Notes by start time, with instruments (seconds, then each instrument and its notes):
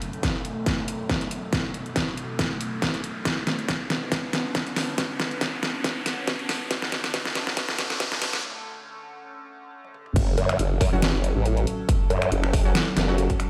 Already playing: ambient pad F#2 B2 A3, riser
0.02 closed hi-hat
0.13 closed hi-hat
0.23 kick, snare, closed hi-hat
0.45 closed hi-hat
0.66 kick, snare, closed hi-hat
0.88 closed hi-hat
1.09 kick, snare, closed hi-hat
1.21 closed hi-hat
1.31 closed hi-hat
1.53 kick, snare, closed hi-hat
1.74 closed hi-hat
1.86 closed hi-hat
1.96 kick, snare, closed hi-hat
2.17 closed hi-hat
2.39 kick, snare, closed hi-hat
2.61 closed hi-hat
2.82 kick, snare, closed hi-hat
2.94 closed hi-hat
3.04 closed hi-hat
3.25 ambient pad D3 B3 C#4, kick, snare, closed hi-hat
3.47 snare, closed hi-hat
3.59 closed hi-hat
3.68 kick, snare, closed hi-hat
3.90 snare, closed hi-hat
4.12 kick, snare, closed hi-hat
4.33 snare, closed hi-hat
4.55 kick, snare, closed hi-hat
4.67 closed hi-hat
4.76 snare, open hi-hat
4.98 kick, snare, closed hi-hat
5.20 snare, closed hi-hat
5.31 closed hi-hat
5.41 kick, snare, closed hi-hat
5.63 snare, closed hi-hat
5.84 kick, snare, closed hi-hat
6.06 snare, closed hi-hat
6.28 kick, snare, closed hi-hat
6.39 closed hi-hat
6.49 snare, open hi-hat
6.71 ambient pad A3, kick, snare, closed hi-hat
6.82 snare
6.92 snare, closed hi-hat
7.04 snare, closed hi-hat
7.14 kick, snare, closed hi-hat
7.25 snare
7.35 snare, closed hi-hat
7.47 snare
7.57 kick, snare, closed hi-hat
7.69 snare
7.79 snare, closed hi-hat
7.90 snare
8.00 kick, snare, closed hi-hat
8.12 snare, closed hi-hat
8.22 snare, open hi-hat
8.33 snare
9.85 high tom
9.94 mid tom
10.06 mid tom
10.16 wobble bass F#1, ambient pad F#3 C#4 A4, kick, closed hi-hat, crash
10.38 wobble bass F#2, closed hi-hat
10.49 finger snap, closed hi-hat
10.59 wobble bass F#1, closed hi-hat
10.81 wobble bass F#2, kick, open hi-hat
10.92 wobble bass F#1, synth stab F#3 C#4 F#4
11.02 snare, closed hi-hat
11.14 wobble bass F#1
11.24 closed hi-hat
11.36 wobble bass A1
11.46 closed hi-hat
11.57 closed hi-hat
11.67 closed hi-hat
11.89 kick, closed hi-hat
12.10 wobble bass F#2, closed hi-hat
12.22 finger snap, closed hi-hat
12.32 wobble bass F#1, closed hi-hat
12.44 finger snap
12.53 kick, open hi-hat
12.65 synth stab F#3 C#4 F#4
12.75 snare, closed hi-hat
12.97 wobble bass F#1, snare, closed hi-hat
13.08 synth stab F#3 C#4 F#4
13.18 closed hi-hat
13.30 kick, closed hi-hat
13.40 finger snap, closed hi-hat